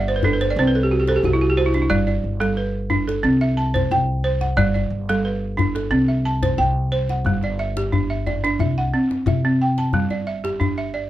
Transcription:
0.00 0.53 G1 medium
0.00 0.14 D5 medium
0.08 0.23 C5 medium
0.16 0.31 B4 medium
0.23 0.58 D4 medium
0.23 0.40 A4 medium
0.23 djembe bass medium
0.33 0.48 B4 medium
0.41 0.56 C5 medium
0.41 djembe slap soft
0.50 0.65 D5 medium
0.56 1.19 C2 loud
0.56 0.92 C4 medium
0.56 0.74 C5 medium
0.67 0.82 B4 medium
0.75 0.90 A4 medium
0.83 0.98 G4 medium
0.91 1.07 F#4 medium
1.00 1.15 G4 medium
1.07 1.23 A4 medium
1.07 1.41 C5 medium
1.07 djembe slap medium
1.16 1.31 G4 medium
1.23 1.86 C2 medium
1.23 1.40 F#4 medium
1.23 djembe slap soft
1.23 djembe tone medium
1.33 1.49 E4 medium
1.41 1.56 F#4 medium
1.50 1.65 G4 medium
1.57 1.73 F#4 medium
1.57 1.91 C5 medium
1.66 1.81 E4 medium
1.74 1.90 D4 medium
1.74 djembe slap soft
1.82 1.98 E4 medium
1.90 2.21 G1 loud
1.90 2.24 G3 medium
1.90 2.06 D5 medium
1.90 djembe slap soft
1.90 djembe bass medium
2.07 2.57 D5 medium
2.07 djembe tone soft
2.24 3.20 G1 medium
2.40 2.74 G3 medium
2.40 2.90 A4 medium
2.40 djembe slap soft
2.57 3.08 B4 medium
2.57 djembe slap soft
2.90 3.24 D4 medium
2.90 djembe bass medium
3.08 3.41 A4 medium
3.08 djembe slap soft
3.23 3.87 C2 loud
3.23 3.57 C4 medium
3.41 3.91 E5 medium
3.57 4.08 A5 medium
3.74 4.08 C5 medium
3.74 djembe slap soft
3.74 djembe bass medium
3.91 4.54 C2 medium
3.91 4.42 G5 medium
3.91 djembe slap soft
3.91 djembe tone medium
4.24 4.58 C5 medium
4.41 4.75 F#5 medium
4.41 djembe slap soft
4.57 4.88 G1 medium
4.57 4.91 G3 medium
4.57 4.73 D5 medium
4.57 djembe slap soft
4.57 djembe bass medium
4.74 5.24 D5 medium
4.74 djembe tone medium
4.90 5.87 G1 medium
5.09 5.42 G3 medium
5.09 5.58 A4 medium
5.09 djembe slap soft
5.25 5.75 B4 medium
5.57 5.91 D4 medium
5.57 djembe tone medium
5.57 djembe bass medium
5.75 6.09 A4 medium
5.75 djembe slap medium
5.91 6.54 C2 loud
5.91 6.25 C4 medium
6.08 6.58 E5 medium
6.25 6.76 A5 medium
6.43 6.76 C5 medium
6.43 djembe slap medium
6.43 djembe bass medium
6.58 7.21 C2 medium
6.58 7.09 G5 medium
6.58 djembe slap soft
6.58 djembe tone medium
6.92 7.25 C5 medium
6.92 djembe slap soft
7.09 7.43 F#5 medium
7.09 djembe slap soft
7.24 8.55 G1 medium
7.24 7.59 G3 medium
7.24 djembe slap soft
7.24 djembe bass medium
7.43 7.93 D5 medium
7.43 djembe tone medium
7.59 8.09 E5 medium
7.77 8.26 G4 medium
7.77 djembe slap medium
7.92 8.26 D4 medium
7.92 djembe slap soft
7.92 djembe bass medium
8.10 8.59 E5 medium
8.26 8.77 D5 medium
8.26 djembe slap soft
8.26 djembe tone medium
8.44 8.60 D4 medium
8.44 djembe slap medium
8.59 8.90 C2 loud
8.59 9.10 E5 medium
8.59 djembe bass medium
8.77 9.27 F#5 medium
8.77 djembe slap soft
8.94 9.27 C4 medium
8.94 djembe slap soft
9.11 djembe slap medium
9.26 9.89 C3 loud
9.26 9.78 E5 medium
9.26 djembe tone medium
9.26 djembe bass medium
9.44 9.78 C4 medium
9.44 djembe slap soft
9.61 10.11 G5 medium
9.78 10.11 A5 medium
9.78 djembe slap soft
9.93 11.10 G1 medium
9.93 10.27 G3 medium
9.93 djembe slap soft
9.93 djembe bass medium
10.10 10.60 D5 medium
10.10 djembe tone medium
10.27 10.77 E5 medium
10.44 10.94 G4 medium
10.44 djembe slap medium
10.60 10.94 D4 medium
10.60 djembe slap soft
10.60 djembe bass medium
10.78 11.10 E5 medium
10.94 11.10 D5 medium
10.94 djembe slap soft

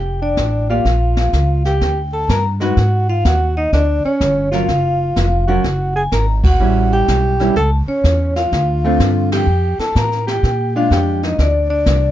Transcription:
0.00 0.36 F1 medium
0.00 0.19 G4 medium
0.00 0.66 G5 medium
0.22 0.66 D4 medium
0.22 0.66 D5 medium
0.37 0.84 A1 medium
0.37 kick soft
0.37 snare soft
0.37 hi-hat pedal soft
0.70 0.84 A#3 medium
0.70 0.84 F4 soft
0.70 1.61 F4 medium
0.70 0.84 G4 medium
0.70 0.85 D5 soft
0.70 1.69 F5 medium
0.85 1.32 A#1 medium
0.85 brush sweep soft
0.85 kick soft
0.85 snare soft
1.17 snare soft
1.33 1.80 C#2 medium
1.33 kick soft
1.33 snare medium
1.33 hi-hat pedal soft
1.65 2.00 G4 medium
1.65 2.15 G5 medium
1.65 snare soft
1.81 2.28 D2 medium
1.81 brush sweep soft
1.81 kick soft
1.81 snare soft
2.13 2.28 A4 medium
2.13 2.28 A5 medium
2.29 2.75 G2 medium
2.29 2.45 A#4 medium
2.29 2.44 A#5 medium
2.29 kick soft
2.29 snare medium
2.29 hi-hat pedal medium
2.60 2.75 G#3 medium
2.60 2.76 D#4 medium
2.60 2.76 F#4 medium
2.60 3.06 F#4 medium
2.60 2.76 B4 medium
2.60 3.11 F#5 medium
2.60 snare soft
2.77 3.23 G#2 medium
2.77 brush sweep soft
2.77 kick soft
2.77 snare soft
3.09 3.24 F4 medium
3.09 3.24 F5 medium
3.25 3.71 D#2 medium
3.25 3.55 F#4 medium
3.25 3.58 F#5 medium
3.25 kick soft
3.25 snare medium
3.25 hi-hat pedal medium
3.57 3.72 D#4 medium
3.57 3.72 D#5 medium
3.72 4.02 D2 medium
3.72 4.02 D4 medium
3.72 4.06 D5 medium
3.72 brush sweep soft
3.72 kick soft
3.72 snare soft
4.05 4.49 C#4 medium
4.05 4.50 C#5 medium
4.05 muted upright bass stroke soft
4.21 4.67 G1 medium
4.21 kick soft
4.21 snare medium
4.21 hi-hat pedal medium
4.51 4.67 F#3 medium
4.51 4.67 C#4 medium
4.51 5.44 F4 medium
4.51 4.67 F4 medium
4.51 4.68 A#4 medium
4.51 5.52 F5 medium
4.51 snare soft
4.68 5.15 F#1 medium
4.68 brush sweep soft
4.68 kick soft
4.68 snare soft
5.16 5.63 F1 medium
5.16 kick soft
5.16 snare medium
5.16 hi-hat pedal medium
5.47 5.63 F#3 medium
5.47 5.63 C#4 medium
5.47 5.63 F4 medium
5.47 5.92 F#4 medium
5.47 5.64 A#4 medium
5.47 5.98 F#5 medium
5.64 6.11 F#1 medium
5.64 brush sweep soft
5.64 kick soft
5.64 snare soft
5.96 6.03 G#4 medium
5.96 6.04 G#5 medium
6.12 6.58 G#1 medium
6.12 6.26 A#4 medium
6.12 6.27 A#5 medium
6.12 kick soft
6.12 snare medium
6.12 hi-hat pedal medium
6.44 6.88 F#4 medium
6.44 6.90 F#5 medium
6.44 kick medium
6.44 ride medium
6.59 7.06 A1 medium
6.59 7.33 G3 medium
6.59 7.34 C#4 medium
6.59 7.34 E4 medium
6.59 brush sweep soft
6.93 7.53 G4 medium
6.93 7.58 G5 medium
7.08 7.54 B1 medium
7.08 kick soft
7.08 snare medium
7.08 hi-hat pedal medium
7.39 7.54 G3 medium
7.39 7.55 C#4 medium
7.39 7.55 E4 medium
7.39 snare soft
7.56 7.85 C#2 medium
7.56 7.71 A4 medium
7.56 7.72 A5 medium
7.56 brush sweep soft
7.56 kick soft
7.56 snare soft
7.87 8.32 C#4 medium
7.87 8.32 C#5 medium
7.87 muted upright bass stroke soft
8.04 8.50 E2 medium
8.04 kick soft
8.04 snare medium
8.04 hi-hat pedal medium
8.36 9.27 F4 medium
8.36 9.28 F5 medium
8.36 snare soft
8.52 8.98 D2 medium
8.52 brush sweep soft
8.52 kick soft
8.52 snare soft
8.84 9.45 D3 medium
8.84 9.45 A3 medium
8.84 9.45 C4 medium
8.84 9.45 F4 medium
8.99 9.46 G2 medium
8.99 kick soft
8.99 snare medium
8.99 hi-hat pedal medium
9.32 9.76 G4 medium
9.32 9.76 G5 medium
9.32 snare medium
9.32 ride medium
9.47 9.76 F2 medium
9.47 brush sweep soft
9.79 9.95 A4 medium
9.79 9.96 A5 medium
9.79 muted upright bass stroke soft
9.79 snare soft
9.95 10.42 A2 medium
9.95 10.25 A#4 medium
9.95 10.25 A#5 medium
9.95 kick soft
9.95 snare medium
9.95 hi-hat pedal medium
10.12 snare soft
10.27 10.71 G4 medium
10.27 10.77 G5 medium
10.27 snare soft
10.43 10.89 A#2 medium
10.43 brush sweep soft
10.43 kick soft
10.43 snare soft
10.76 11.36 G#3 medium
10.76 11.36 D4 medium
10.76 10.90 F4 medium
10.76 11.37 F4 medium
10.76 10.92 F5 medium
10.91 11.37 F2 medium
10.91 11.20 G4 medium
10.91 11.21 G5 medium
10.91 kick soft
10.91 snare medium
10.91 hi-hat pedal soft
11.23 11.38 D#4 medium
11.23 11.38 D#5 medium
11.23 snare soft
11.38 11.85 D2 medium
11.38 11.68 D4 medium
11.38 11.69 D5 medium
11.38 brush sweep medium
11.38 kick soft
11.38 snare soft
11.70 12.11 D4 medium
11.70 12.11 D5 medium
11.86 12.11 C2 medium
11.86 kick soft
11.86 snare medium
11.86 hi-hat pedal medium

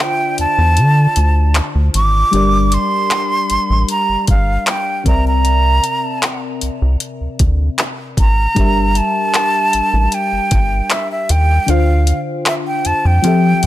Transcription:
0.00 2.28 D3 medium
0.00 2.29 D4 medium
0.00 2.29 F4 medium
0.00 2.30 C5 medium
0.00 2.31 D5 medium
0.00 0.39 G5 loud
0.38 0.46 E2 medium
0.38 1.64 A5 loud
0.38 closed hi-hat medium
0.58 0.79 E2 medium
0.77 1.07 D3 loud
0.77 closed hi-hat medium
1.16 1.61 D2 medium
1.16 closed hi-hat medium
1.55 clap loud
1.55 closed hi-hat medium
1.75 1.90 D2 medium
1.94 2.24 G#1 medium
1.94 2.75 D6 loud
1.94 closed hi-hat medium
2.31 2.78 G1 loud
2.31 5.01 G3 medium
2.31 5.02 D4 medium
2.31 5.02 G4 medium
2.31 closed hi-hat medium
2.35 5.03 A#4 medium
2.35 5.03 D5 medium
2.72 3.90 C6 loud
2.72 closed hi-hat medium
3.11 clap loud
3.11 closed hi-hat medium
3.50 3.58 A1 medium
3.50 closed hi-hat medium
3.70 3.84 A1 medium
3.89 4.26 A#5 loud
3.89 closed hi-hat medium
4.09 4.16 G1 soft
4.27 4.58 G1 medium
4.27 4.65 F5 medium
4.27 kick medium
4.27 closed hi-hat medium
4.67 5.04 G5 medium
4.67 clap medium
4.67 closed hi-hat medium
5.04 5.80 C2 medium
5.04 8.12 C3 medium
5.04 8.13 C4 medium
5.04 8.14 A#4 medium
5.04 8.14 D5 medium
5.04 5.25 A#5 medium
5.04 kick loud
5.04 closed hi-hat medium
5.09 8.15 E5 medium
5.27 6.39 A#5 loud
5.45 closed hi-hat medium
5.84 closed hi-hat medium
6.23 clap loud
6.23 closed hi-hat medium
6.61 6.70 C2 soft
6.61 closed hi-hat medium
6.82 6.96 C2 medium
7.00 closed hi-hat medium
7.21 7.28 D2 soft
7.39 7.69 D2 medium
7.39 kick medium
7.39 closed hi-hat medium
7.78 clap loud
7.78 closed hi-hat medium
8.17 8.47 G#1 medium
8.17 8.99 A#5 loud
8.17 kick medium
8.17 closed hi-hat medium
8.55 9.01 G1 loud
8.55 11.63 G3 medium
8.55 11.64 D4 medium
8.55 11.65 G4 medium
8.55 kick loud
8.55 closed hi-hat medium
8.59 11.65 A#4 medium
8.59 11.66 E5 medium
8.95 10.16 A5 loud
8.95 closed hi-hat medium
9.34 clap loud
9.34 closed hi-hat medium
9.73 9.81 A1 soft
9.73 closed hi-hat medium
9.93 10.08 A1 medium
10.12 10.94 G5 loud
10.12 closed hi-hat medium
10.32 10.40 G1 soft
10.51 10.81 G1 medium
10.51 kick medium
10.51 closed hi-hat medium
10.90 11.11 E5 medium
10.90 clap medium
10.90 closed hi-hat medium
11.12 11.32 E5 medium
11.29 11.59 D#2 medium
11.29 11.72 G5 medium
11.29 closed hi-hat medium
11.66 12.13 D2 loud
11.66 13.20 D3 medium
11.66 13.21 D4 medium
11.66 13.21 F4 medium
11.66 12.20 F5 medium
11.66 closed hi-hat medium
11.70 13.22 C5 medium
11.70 13.23 F5 medium
12.07 closed hi-hat medium
12.46 12.54 E5 medium
12.46 clap loud
12.46 closed hi-hat medium
12.67 12.88 G5 medium
12.85 12.93 F2 soft
12.85 13.08 A5 medium
12.85 closed hi-hat medium
13.05 13.19 F2 medium
13.05 13.66 G5 medium
13.22 13.66 F3 medium
13.22 13.54 F3 loud
13.22 13.66 C4 medium
13.22 13.66 G4 medium
13.22 closed hi-hat medium
13.26 13.66 A4 medium
13.26 13.66 E5 medium
13.63 13.66 F2 loud
13.63 closed hi-hat medium

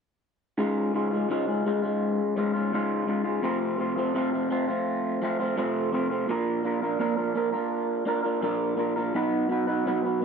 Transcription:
0.58 1.27 C#2 medium
0.58 0.92 G#2 medium
0.58 0.93 C#3 medium
0.58 0.94 G#3 medium
0.58 0.95 F4 medium
0.94 1.28 G#2 medium
0.94 1.13 C#3 medium
0.94 1.12 G#3 medium
0.94 1.11 F4 medium
1.11 1.29 C#3 medium
1.11 1.30 G#3 medium
1.11 1.31 F4 medium
1.29 1.83 C#2 medium
1.29 1.64 G#2 medium
1.29 1.49 C#3 medium
1.29 1.47 G#3 medium
1.29 1.47 F4 medium
1.48 1.65 C#3 soft
1.48 1.66 G#3 soft
1.48 1.67 F4 medium
1.65 2.19 G#2 medium
1.65 1.84 C#3 medium
1.65 1.82 G#3 medium
1.65 1.82 F4 medium
1.82 2.36 C#3 soft
1.82 2.36 G#3 medium
1.82 2.38 F4 medium
2.36 2.72 G#2 medium
2.36 2.55 C#3 medium
2.36 2.54 G#3 medium
2.36 2.53 F4 medium
2.54 2.73 C#3 soft
2.54 2.73 G#3 medium
2.54 2.74 F4 medium
2.72 3.42 C#2 medium
2.72 3.06 G#2 medium
2.72 3.07 C#3 medium
2.72 3.07 G#3 medium
2.72 3.09 F4 medium
3.07 3.41 G#2 medium
3.07 3.25 C#3 medium
3.07 3.24 G#3 medium
3.07 3.24 F4 medium
3.24 3.42 C#3 soft
3.24 3.41 G#3 medium
3.24 3.45 F4 medium
3.42 4.13 F2 medium
3.42 4.14 C3 medium
3.42 3.78 F3 medium
3.42 3.78 A3 medium
3.42 3.78 C4 medium
3.42 3.80 F4 loud
3.78 3.98 F3 medium
3.78 3.97 A3 medium
3.78 3.96 C4 medium
3.78 3.96 F4 medium
3.96 4.15 F3 soft
3.96 4.15 A3 medium
3.96 4.15 C4 medium
3.96 4.16 F4 medium
4.14 4.68 F2 medium
4.14 4.69 C3 medium
4.14 4.35 F3 medium
4.14 4.33 A3 medium
4.14 4.32 C4 medium
4.14 4.32 F4 medium
4.33 4.50 F3 medium
4.33 4.50 A3 medium
4.33 4.51 C4 medium
4.33 4.52 F4 medium
4.50 4.69 F3 medium
4.50 4.68 A3 medium
4.50 4.67 C4 medium
4.50 4.67 F4 medium
4.68 5.20 F3 medium
4.68 5.22 A3 soft
4.68 5.22 C4 medium
4.68 5.24 F4 medium
5.22 5.41 F3 medium
5.22 5.40 A3 medium
5.22 5.39 C4 medium
5.22 5.38 F4 medium
5.39 5.56 F3 soft
5.39 5.57 A3 medium
5.39 5.57 C4 medium
5.39 5.58 F4 medium
5.56 6.26 F2 medium
5.56 6.27 C3 medium
5.56 5.91 F3 medium
5.56 5.92 A3 medium
5.56 5.93 C4 medium
5.56 5.93 F4 medium
5.92 6.11 F3 medium
5.92 6.10 A3 medium
5.92 6.10 C4 medium
5.92 6.09 F4 medium
6.10 6.28 F3 medium
6.10 6.27 A3 medium
6.10 6.27 C4 medium
6.10 6.27 F4 medium
6.28 6.98 A#2 medium
6.28 6.98 F3 medium
6.28 6.62 A#3 medium
6.28 6.63 D4 medium
6.28 6.64 F4 medium
6.28 6.65 A#4 medium
6.64 6.83 A#3 medium
6.64 6.83 D4 medium
6.64 6.82 F4 medium
6.64 6.81 A#4 medium
6.82 6.99 A#3 medium
6.82 6.99 D4 medium
6.82 7.00 F4 medium
6.82 7.00 A#4 medium
6.99 7.54 A#2 medium
6.99 7.54 F3 medium
6.99 7.17 A#3 medium
6.99 7.17 D4 medium
6.99 7.16 F4 medium
6.99 7.15 A#4 medium
7.16 7.34 A#3 medium
7.16 7.34 D4 medium
7.16 7.35 F4 medium
7.16 7.36 A#4 medium
7.35 7.53 A#3 medium
7.35 7.52 D4 medium
7.35 7.52 F4 medium
7.35 7.51 A#4 medium
7.52 8.04 A#3 medium
7.52 8.05 D4 medium
7.52 8.07 F4 medium
7.52 8.07 A#4 medium
8.05 8.25 A#3 medium
8.05 8.24 D4 medium
8.05 8.23 F4 medium
8.05 8.21 A#4 medium
8.23 8.41 A#3 soft
8.23 8.42 D4 medium
8.23 8.42 F4 medium
8.23 8.43 A#4 medium
8.41 9.12 A#2 medium
8.41 9.12 F3 medium
8.41 8.75 A#3 medium
8.41 8.76 D4 medium
8.41 8.77 F4 medium
8.41 8.78 A#4 medium
8.77 8.97 A#3 medium
8.77 8.97 D4 medium
8.77 8.96 F4 medium
8.77 8.95 A#4 medium
8.96 9.14 A#3 soft
8.96 9.13 D4 medium
8.96 9.13 F4 medium
8.96 9.12 A#4 medium
9.14 9.84 B2 medium
9.14 9.85 F#3 medium
9.14 9.48 B3 medium
9.14 9.49 D#4 medium
9.14 9.50 F#4 medium
9.14 9.51 B4 medium
9.49 9.68 B3 medium
9.49 9.68 D#4 medium
9.49 9.67 F#4 medium
9.49 9.66 B4 medium
9.67 9.86 B3 soft
9.67 9.86 D#4 medium
9.67 9.86 F#4 medium
9.67 9.87 B4 medium
9.85 10.25 B2 medium
9.85 10.25 F#3 medium
9.85 10.05 B3 medium
9.85 10.04 D#4 medium
9.85 10.04 F#4 medium
9.85 10.03 B4 medium
10.04 10.20 B3 soft
10.04 10.22 D#4 medium
10.04 10.22 F#4 medium
10.04 10.22 B4 medium
10.22 10.25 B3 medium

